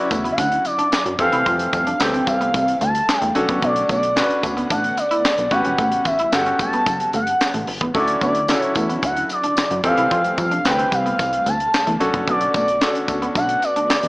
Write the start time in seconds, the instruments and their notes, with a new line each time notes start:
Already playing: string machine C#3 D3 F#3 E4, grand piano C#4 E4 F#4 B4
0.11 analog synth bass E2, clean electric guitar A3, kick, closed hi-hat, tambourine
0.24 clean electric guitar B3, closed hi-hat
0.32 analog synth lead F5
0.38 analog synth bass D2, clean electric guitar C#4, analog synth lead F#5, kick, closed hi-hat, tambourine
0.52 closed hi-hat
0.65 analog synth lead D5, muted clean electric guitar stroke, closed hi-hat, tambourine
0.79 clean electric guitar D4, closed hi-hat
0.92 muted clean electric guitar stroke, snare, clap, tambourine
1.06 analog synth bass F#2, closed hi-hat
1.19 analog synth bass F2, string machine C3 G3 A3 F5, grand piano E3 C4 G4 A4, clean electric guitar C4, analog synth lead F5, kick, closed hi-hat, tambourine
1.32 analog synth bass C2, clean electric guitar E4, closed hi-hat
1.46 analog synth bass F2, clean electric guitar F4, kick, closed hi-hat, tambourine
1.59 closed hi-hat
1.73 analog synth bass F2, analog synth lead F5, muted clean electric guitar stroke, kick, closed hi-hat, tambourine
1.87 clean electric guitar D4, closed hi-hat
2.00 analog synth bass D2, grand piano E3 C4 G4 A4, analog synth lead G5, snare, clap, tambourine
2.14 clean electric guitar C4, closed hi-hat
2.27 analog synth bass C2, analog synth lead F5, muted clean electric guitar stroke, kick, closed hi-hat, tambourine
2.41 clean electric guitar B3, closed hi-hat
2.54 analog synth bass C2, kick, closed hi-hat, tambourine
2.68 closed hi-hat
2.81 analog synth bass D2, clean electric guitar A3, analog synth lead A5, closed hi-hat, tambourine
2.95 closed hi-hat
3.09 snare, clap, tambourine
3.22 analog synth bass E2, clean electric guitar A3, closed hi-hat
3.35 analog synth bass B1, string machine D3 B3 F#5, grand piano C#4 D4 F#4 A4, muted clean electric guitar stroke, closed hi-hat
3.49 analog synth bass F#1, clean electric guitar B3, kick, closed hi-hat
3.62 analog synth bass B1, clean electric guitar B3, analog synth lead D5, kick, closed hi-hat, tambourine
3.76 muted clean electric guitar stroke, closed hi-hat
3.89 analog synth bass B1, clean electric guitar A3, analog synth lead D5, kick, closed hi-hat, tambourine
4.03 closed hi-hat
4.16 grand piano C#4 D4 F#4 B4, muted clean electric guitar stroke, snare, clap, tambourine
4.30 closed hi-hat
4.43 analog synth bass D2, clean electric guitar A3, kick, closed hi-hat, tambourine
4.57 clean electric guitar B3, closed hi-hat
4.70 analog synth bass A1, clean electric guitar D4, analog synth lead F#5, kick, closed hi-hat, tambourine
4.84 closed hi-hat
4.97 analog synth lead D5, muted clean electric guitar stroke, closed hi-hat, tambourine
5.11 clean electric guitar E4, closed hi-hat
5.25 muted clean electric guitar stroke, snare, clap, tambourine
5.38 analog synth bass B1, closed hi-hat
5.51 analog synth bass A1, string machine C#3 G3, clean electric guitar B3, grand piano C#4 F#4 G4 B4, analog synth lead F#5, kick, closed hi-hat, tambourine
5.64 analog synth bass E1, clean electric guitar C#4, closed hi-hat
5.78 analog synth bass A1, clean electric guitar A3, kick, closed hi-hat, tambourine
5.92 closed hi-hat
6.05 analog synth bass A1, analog synth lead E5, muted clean electric guitar stroke, kick, closed hi-hat, tambourine
6.19 clean electric guitar E4, closed hi-hat
6.32 analog synth bass G1, grand piano C#4 F#4 G4 A4, analog synth lead F#5, snare, clap, tambourine
6.46 clean electric guitar C#4, closed hi-hat
6.59 analog synth bass F#1, analog synth lead A5, muted clean electric guitar stroke, kick, closed hi-hat, tambourine
6.73 clean electric guitar B3, closed hi-hat
6.86 analog synth bass F#1, kick, closed hi-hat, tambourine
7.00 closed hi-hat
7.13 analog synth bass G1, clean electric guitar A3, analog synth lead F#5, closed hi-hat, tambourine
7.27 closed hi-hat
7.41 snare, clap, tambourine
7.54 analog synth bass A1, clean electric guitar A3, closed hi-hat
7.67 analog synth bass G1, muted clean electric guitar stroke, open hi-hat
7.81 analog synth bass A1, clean electric guitar B3, kick
7.94 analog synth bass D2, string machine C#3 D3 F#3 E4, grand piano C#4 E4 F#4 A4, clean electric guitar D4, analog synth lead D5, kick, closed hi-hat, tambourine
8.08 muted clean electric guitar stroke, closed hi-hat
8.21 analog synth bass D2, clean electric guitar B3, analog synth lead D5, kick, closed hi-hat, tambourine
8.35 closed hi-hat
8.48 grand piano C#4 E4 F#4 A4, muted clean electric guitar stroke, snare, clap, tambourine
8.59 analog synth lead C#5, closed hi-hat
8.75 analog synth bass E2, clean electric guitar A3, kick, closed hi-hat, tambourine
8.89 clean electric guitar B3, closed hi-hat
9.02 analog synth bass D2, clean electric guitar C#4, analog synth lead F#5, kick, closed hi-hat, tambourine
9.16 closed hi-hat
9.29 analog synth lead D5, muted clean electric guitar stroke, closed hi-hat, tambourine
9.44 clean electric guitar D4, closed hi-hat
9.57 muted clean electric guitar stroke, snare, clap, tambourine
9.71 analog synth bass F#2, closed hi-hat
9.84 analog synth bass F2, string machine C3 G3 A3 F5, grand piano E3 C4 G4 A4, clean electric guitar C4, analog synth lead F5, kick, closed hi-hat
9.97 analog synth bass C2, clean electric guitar E4, closed hi-hat
10.11 analog synth bass F2, clean electric guitar F4, kick, closed hi-hat
10.24 closed hi-hat
10.38 analog synth bass F2, analog synth lead F5, muted clean electric guitar stroke, kick, closed hi-hat, tambourine
10.51 clean electric guitar D4, closed hi-hat
10.65 analog synth bass D2, grand piano E3 C4 G4 B4, analog synth lead G5, snare, clap, tambourine
10.79 clean electric guitar C4, closed hi-hat
10.92 analog synth bass C2, analog synth lead F5, muted clean electric guitar stroke, kick, closed hi-hat, tambourine
11.06 clean electric guitar B3, closed hi-hat
11.19 analog synth bass C2, kick, closed hi-hat, tambourine
11.33 closed hi-hat
11.46 analog synth bass D2, clean electric guitar A3, analog synth lead A5, closed hi-hat, tambourine
11.60 closed hi-hat
11.74 snare, clap, tambourine
11.87 analog synth bass E2, clean electric guitar A3, closed hi-hat
12.00 analog synth bass B1, string machine D3 B3 F#4, grand piano C#4 D4 F#4 A4, muted clean electric guitar stroke, closed hi-hat, tambourine
12.14 analog synth bass F#1, clean electric guitar B3, kick, closed hi-hat
12.28 analog synth bass B1, clean electric guitar B3, analog synth lead D5, kick, closed hi-hat
12.41 muted clean electric guitar stroke, closed hi-hat
12.54 analog synth bass B1, clean electric guitar A3, analog synth lead D5, kick, closed hi-hat, tambourine
12.68 closed hi-hat
12.81 grand piano C#4 D4 F#4 A4, muted clean electric guitar stroke, snare, clap, tambourine
12.95 closed hi-hat
13.08 analog synth bass D2, clean electric guitar A3, kick, closed hi-hat, tambourine
13.22 clean electric guitar B3, closed hi-hat
13.35 analog synth bass B1, clean electric guitar D4, analog synth lead F#5, kick, closed hi-hat, tambourine
13.49 closed hi-hat
13.62 analog synth lead D5, muted clean electric guitar stroke, closed hi-hat, tambourine
13.76 clean electric guitar D4, closed hi-hat
13.90 muted clean electric guitar stroke, snare, clap, tambourine
14.03 analog synth bass E2, closed hi-hat